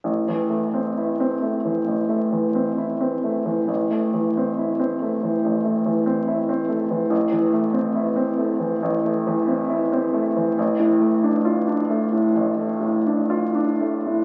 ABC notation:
X:1
M:4/4
L:1/16
Q:1/4=68
K:Am
V:1 name="Upright piano"
A,,, E,, A, C E C A, E,, A,,, A, E,, C E C A, E,, | A,,, A, E,, C E C A, E,, A,,, A, E,, C E C A, E,, | A,,, E,, A, C E C A, E,, A,,, A, E,, C E C A, E,, | A,,, A,, A, D F D A, A,, A,,, A, A,, D F D A, A,, |]